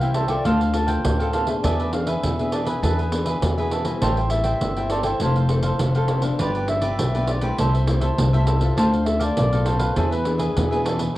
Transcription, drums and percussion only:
0.01 pandeiro
0.14 pandeiro
0.28 pandeiro
0.45 pandeiro
0.61 pandeiro
0.74 pandeiro
0.88 pandeiro
1.05 pandeiro
1.20 pandeiro
1.34 pandeiro
1.47 pandeiro
1.64 pandeiro
1.80 pandeiro
1.93 pandeiro
2.07 pandeiro
2.24 pandeiro
2.39 pandeiro
2.52 pandeiro
2.67 pandeiro
2.83 pandeiro
2.99 pandeiro
3.12 pandeiro
3.26 pandeiro
3.42 pandeiro
3.58 pandeiro
3.71 pandeiro
3.85 pandeiro
4.02 pandeiro
4.17 pandeiro
4.30 pandeiro
4.44 pandeiro
4.61 pandeiro
4.76 pandeiro
4.90 pandeiro
5.03 pandeiro
5.20 pandeiro
5.36 pandeiro
5.49 pandeiro
5.63 pandeiro
5.79 pandeiro
5.95 pandeiro
6.08 pandeiro
6.22 pandeiro
6.39 pandeiro
6.55 pandeiro
6.68 pandeiro
6.82 pandeiro
6.99 pandeiro
7.15 pandeiro
7.28 pandeiro
7.42 pandeiro
7.58 pandeiro
7.75 pandeiro
7.87 pandeiro
8.01 pandeiro
8.18 pandeiro
8.34 pandeiro
8.47 pandeiro
8.61 pandeiro
8.78 pandeiro
8.94 pandeiro
9.06 pandeiro
9.20 pandeiro
9.37 pandeiro
9.53 pandeiro
9.66 pandeiro
9.79 pandeiro
9.96 pandeiro
10.12 pandeiro
10.25 pandeiro
10.39 pandeiro
10.57 pandeiro
10.72 pandeiro
10.86 pandeiro
10.99 pandeiro

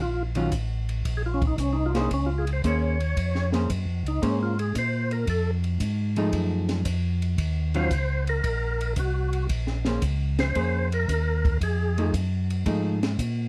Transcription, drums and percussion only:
0.35 ride
0.52 kick, hi-hat pedal, ride
0.89 ride
1.05 kick, ride
1.42 kick, ride
1.58 kick, hi-hat pedal, ride
1.95 snare, ride
2.11 kick, ride
2.47 ride
2.64 kick, hi-hat pedal, ride
3.00 ride
3.17 kick, ride
3.35 snare
3.52 snare, ride
3.70 kick, hi-hat pedal, ride
4.06 ride
4.22 kick, ride
4.59 ride
4.75 kick, hi-hat pedal, ride
5.11 ride
5.27 kick, ride
5.64 ride
5.80 kick, hi-hat pedal, ride
6.16 ride
6.33 kick, ride
6.69 snare, ride
6.85 kick, hi-hat pedal, ride
7.22 ride
7.38 kick, ride
7.74 ride
7.91 kick, hi-hat pedal, ride
8.27 ride
8.44 kick, ride
8.81 ride
8.96 kick, hi-hat pedal, ride
9.33 ride
9.49 kick, ride
9.67 snare
9.85 snare, ride
10.02 kick, hi-hat pedal, ride
10.39 snare, ride
10.55 kick, ride
10.92 ride
11.08 kick, hi-hat pedal, ride
11.45 kick, ride
11.61 kick, ride
11.98 ride
12.14 kick, hi-hat pedal, ride
12.50 ride
12.66 kick, ride
13.03 snare, ride
13.19 kick, hi-hat pedal, ride

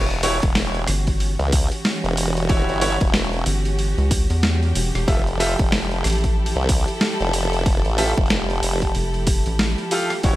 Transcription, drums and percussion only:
0.10 open hi-hat
0.23 open hi-hat
0.42 kick, open hi-hat
0.55 snare, open hi-hat
0.75 open hi-hat
0.87 cross-stick, open hi-hat
1.07 kick, open hi-hat
1.20 open hi-hat
1.39 open hi-hat
1.52 kick, open hi-hat
1.72 open hi-hat
1.85 snare, open hi-hat
2.05 open hi-hat
2.17 open hi-hat
2.37 open hi-hat
2.49 kick, open hi-hat
2.69 open hi-hat
2.81 open hi-hat
3.01 kick, open hi-hat
3.14 snare, open hi-hat
3.33 open hi-hat
3.46 open hi-hat
3.65 open hi-hat
3.79 open hi-hat
3.98 open hi-hat
4.11 kick, open hi-hat
4.30 open hi-hat
4.43 snare, open hi-hat
4.62 open hi-hat
4.75 open hi-hat
4.95 cross-stick, open hi-hat
5.08 kick, open hi-hat
5.27 open hi-hat
5.40 open hi-hat
5.59 kick, open hi-hat
5.72 snare, open hi-hat
5.91 open hi-hat
6.04 cross-stick, open hi-hat
6.07 open hi-hat
6.10 open hi-hat
6.13 open hi-hat
6.15 open hi-hat
6.18 open hi-hat
6.21 open hi-hat
6.24 kick, open hi-hat
6.46 open hi-hat
6.56 open hi-hat
6.69 kick, open hi-hat
6.88 open hi-hat
7.01 snare, open hi-hat
7.20 open hi-hat
7.33 open hi-hat
7.53 open hi-hat
7.66 kick, open hi-hat
7.85 open hi-hat
7.98 open hi-hat
8.18 kick, open hi-hat
8.26 open hi-hat
8.30 snare, open hi-hat
8.37 open hi-hat
8.50 open hi-hat
8.63 open hi-hat
8.82 kick, open hi-hat
8.95 open hi-hat
9.14 open hi-hat
9.27 kick, open hi-hat
9.46 open hi-hat
9.59 snare, open hi-hat
9.78 open hi-hat
9.91 open hi-hat
10.10 cross-stick, open hi-hat
10.23 kick, open hi-hat

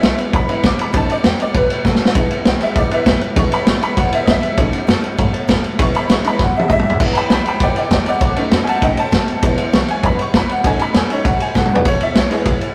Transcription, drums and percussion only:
0.03 snare, ride
0.18 ride
0.33 kick, ride
0.49 ride
0.64 kick, snare, ride
0.79 ride
0.94 kick, ride
1.10 ride
1.24 snare, ride
1.40 ride
1.54 kick, ride
1.70 ride
1.85 kick, snare
1.95 snare
2.05 snare
2.15 kick, ride
2.31 ride
2.45 snare, ride
2.61 snare, ride
2.76 kick, ride
2.91 ride
3.06 kick, snare, ride
3.21 ride
3.36 kick, ride
3.52 ride
3.67 snare, ride
3.82 ride
3.97 kick, ride
4.12 ride
4.27 kick, snare, ride
4.43 ride
4.58 kick, ride
4.73 ride
4.88 snare, ride
5.04 ride
5.19 kick, ride
5.34 ride
5.49 kick, snare, ride
5.64 ride
5.79 kick, ride
5.95 ride
6.10 snare, ride
6.24 ride
6.39 kick, snare
6.59 high tom
6.70 kick, mid tom
6.79 mid tom
6.90 floor tom
7.00 kick, crash
7.15 ride
7.30 snare, ride
7.46 ride
7.60 kick, ride
7.76 ride
7.91 kick, snare, ride
8.06 ride
8.21 kick, ride
8.36 ride
8.51 snare, ride
8.67 ride
8.82 kick, ride
8.97 ride
9.12 kick, snare, ride
9.28 ride
9.43 kick, ride
9.58 ride
9.73 snare, ride
9.88 ride
10.03 kick, ride
10.19 ride
10.34 kick, snare, ride
10.49 ride
10.64 kick, ride
10.79 ride
10.94 snare, ride
11.10 ride
11.25 kick, ride
11.40 ride
11.55 kick, snare
11.66 mid tom
11.75 floor tom
11.85 kick, ride
12.00 ride
12.15 snare, ride
12.31 snare, ride
12.46 kick, ride
12.61 ride

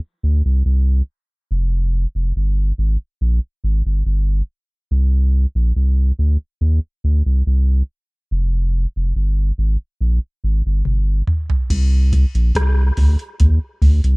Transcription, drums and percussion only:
10.85 high tom
11.27 mid tom
11.50 floor tom
11.70 kick, closed hi-hat, crash
12.13 kick, closed hi-hat
12.35 closed hi-hat
12.55 kick, cross-stick, closed hi-hat
12.97 kick, open hi-hat
13.19 closed hi-hat
13.40 kick, closed hi-hat
13.82 kick, open hi-hat
14.04 closed hi-hat

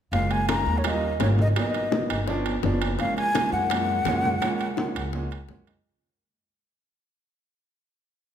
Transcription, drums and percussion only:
0.13 high bongo, high conga, high timbale
0.31 high bongo, high conga, high timbale
0.49 high bongo, high conga, high timbale
0.66 high bongo
0.84 high bongo, high conga, high timbale
1.03 high conga
1.20 high bongo, low bongo, high conga, high timbale, low timbale
1.38 high bongo, high conga
1.56 high bongo, high conga, high timbale
1.74 high bongo, high conga, high timbale
1.92 high bongo, high conga
2.10 high conga, high timbale
2.28 high bongo, high conga
2.46 high bongo, high conga, high timbale
2.63 high bongo, low bongo, high conga
2.82 high bongo, high timbale
2.99 high bongo, high conga, high timbale
3.17 high bongo, high conga, high timbale
3.35 high bongo, high conga, high timbale
3.52 high bongo
3.70 high bongo, high conga, high timbale
3.90 high conga
4.05 high bongo, low bongo, high conga, high timbale
4.24 high bongo, high conga
4.42 high bongo, high conga, high timbale
4.60 high bongo, high conga, high timbale
4.77 high bongo, high conga
4.96 high conga, high timbale
5.13 high bongo, high conga
5.31 high bongo, high conga, high timbale
5.49 high bongo, low bongo, high conga
5.67 high conga, high timbale

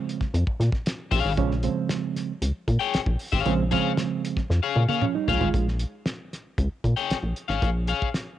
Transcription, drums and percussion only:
0.09 closed hi-hat
0.21 kick, snare
0.34 closed hi-hat
0.47 kick
0.61 snare, closed hi-hat
0.72 kick, snare
0.86 snare, closed hi-hat
1.11 kick, snare, open hi-hat
1.38 kick, closed hi-hat
1.51 snare
1.63 closed hi-hat
1.90 snare, closed hi-hat
2.16 snare, closed hi-hat
2.42 closed hi-hat
2.68 kick, closed hi-hat
2.94 snare, closed hi-hat
3.06 kick
3.19 open hi-hat
3.33 kick, snare
3.46 closed hi-hat
3.71 kick, closed hi-hat
3.97 snare, closed hi-hat
4.25 closed hi-hat
4.37 kick, snare
4.50 snare
4.76 high tom
4.89 high tom
5.02 mid tom
5.28 floor tom
5.41 floor tom
5.54 kick, closed hi-hat
5.68 snare
5.79 closed hi-hat
6.06 snare, closed hi-hat
6.33 snare, closed hi-hat
6.58 kick, closed hi-hat
6.84 kick, closed hi-hat
7.10 snare, closed hi-hat
7.36 closed hi-hat
7.50 snare
7.62 kick, closed hi-hat
7.87 closed hi-hat
8.02 kick
8.14 snare, closed hi-hat

